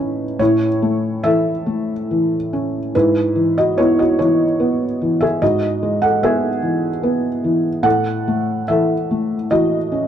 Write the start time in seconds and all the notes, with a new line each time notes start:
Already playing: A2 E3 A3 C#4 D#4 B4
0.39 A2 E4 C#5
0.82 A3
1.24 E3 A4 E5
1.66 A3
2.11 E3
2.53 C#4
2.95 G#2 E4 B4
3.36 E3
3.58 F#4 D#5
3.78 B3 E4 C#5
3.99 F#4 D#5
4.19 E3 E4 C#5
4.60 B3
5.01 E3
5.21 G#4 E5
5.42 G#2 F#4 D#5
5.83 G#3
6.02 A4 F#5
6.23 B3 G#4 E5
6.62 E3
7.03 B3
7.44 E3
7.83 A2 A4 F#5
8.28 A3
8.68 E3 A4 E5
9.11 A3
9.51 E3 F#4 D#5
9.92 C#4